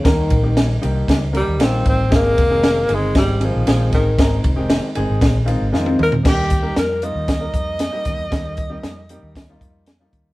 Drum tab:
CC |----------------|----------------|----------------|x---------------|
RD |x-x-x-x-x-x-x-x-|x-x-x-x-x-x-x-x-|x-x-x-x-x-x-----|----------------|
HH |----------------|----------------|----------------|--x-x-x-x-x-x-x-|
SD |o---o---o---o---|o---o---o---o-o-|o---o---o---o---|o---o---o---o-o-|
T1 |----------------|----------------|-------------o--|----------------|
T2 |----------------|----------------|--------------o-|----------------|
FT |----------------|----------------|---------------o|----------------|
BD |o-o-----o-----o-|o-o-----o-----o-|o-o-----o-------|o-o-----o-o---o-|

CC |----------------|
RD |----------------|
HH |x-x-x-x-x-x-x-x-|
SD |o---o---o---o---|
T1 |----------------|
T2 |----------------|
FT |----------------|
BD |o-o-----o-o---o-|